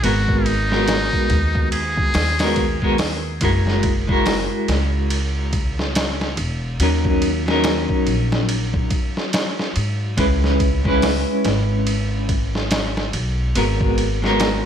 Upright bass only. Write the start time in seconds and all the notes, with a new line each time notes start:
0.04 G#1
1.30 D#2
2.15 D#2
3.42 F#1
4.68 C#2
6.37 E1
6.80 D#2
8.07 A#1
9.77 G#2
10.18 C#2
11.45 G#1
13.14 B1
13.56 G#1